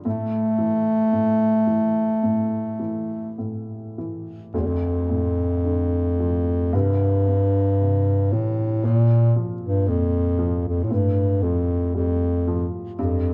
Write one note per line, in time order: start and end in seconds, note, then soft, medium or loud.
0.05 1.11 A2 medium
0.05 3.35 A3 medium
0.58 1.66 E3 soft
1.13 2.21 A2 soft
1.67 2.78 E3 soft
2.23 3.37 A2 soft
2.79 3.97 E3 soft
3.38 4.50 A2 soft
3.98 4.52 E3 soft
4.54 6.70 D2 medium
4.54 4.62 F2 medium
4.60 4.68 E2 medium
4.67 6.76 F2 medium
5.10 6.70 A2 soft
5.65 6.70 D3 soft
6.20 6.72 F3 soft
6.73 8.79 C2 medium
6.73 8.34 G2 medium
7.28 8.79 G2 soft
7.81 8.80 C3 soft
8.32 8.86 A2 medium
8.32 8.82 E3 soft
8.83 9.85 A#2 medium
8.83 9.36 A#2 loud
9.36 10.37 F3 soft
9.62 9.90 G2 medium
9.86 10.65 F2 medium
9.86 10.87 A#2 soft
10.39 10.89 F3 medium
10.68 10.85 F2 medium
10.84 10.94 A2 medium
10.91 11.44 G2 medium
10.91 12.94 A2 medium
11.42 11.94 F2 medium
11.42 12.46 F3 soft
11.95 12.68 F2 medium
11.95 12.95 G3 soft
12.48 12.97 F3 medium
12.99 13.34 F2 loud
12.99 13.34 G2 medium